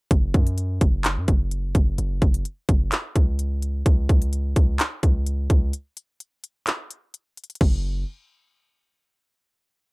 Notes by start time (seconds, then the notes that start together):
0.11 F#1, kick, closed hi-hat
0.34 F#2, kick, closed hi-hat
0.47 closed hi-hat
0.58 closed hi-hat
0.81 F#1, kick, closed hi-hat
1.05 clap, closed hi-hat
1.17 F#2
1.28 F#1, kick, closed hi-hat
1.51 closed hi-hat
1.75 F#1, kick, closed hi-hat
1.98 F#1, closed hi-hat
2.22 F#1, kick, closed hi-hat
2.34 closed hi-hat
2.45 closed hi-hat
2.69 F#1, kick, closed hi-hat
2.92 clap, closed hi-hat
3.16 C#2, kick, closed hi-hat
3.39 closed hi-hat
3.62 closed hi-hat
3.86 C#2, kick, closed hi-hat
4.09 C#2, kick, closed hi-hat
4.22 closed hi-hat
4.33 closed hi-hat
4.56 C#2, kick, closed hi-hat
4.80 clap, closed hi-hat
5.03 C#2, kick, closed hi-hat
5.26 closed hi-hat
5.50 C#2, kick, closed hi-hat
5.73 closed hi-hat
5.97 closed hi-hat
6.20 closed hi-hat
6.44 closed hi-hat
6.67 clap, closed hi-hat
6.91 closed hi-hat
7.14 closed hi-hat
7.37 closed hi-hat
7.44 closed hi-hat
7.50 closed hi-hat
7.55 closed hi-hat
7.61 F#1, kick, crash